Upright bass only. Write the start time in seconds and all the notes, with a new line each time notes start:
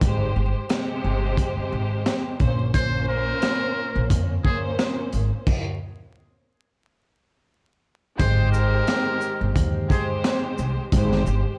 0.02 G#1
0.36 G1
1.04 G1
1.57 muted upright bass stroke
1.72 G#1
2.40 A#1
3.95 A#1
4.10 F2
5.13 G#1
8.20 G#1
9.41 G1
9.56 D#2
10.59 C2
10.93 G#1
11.27 G1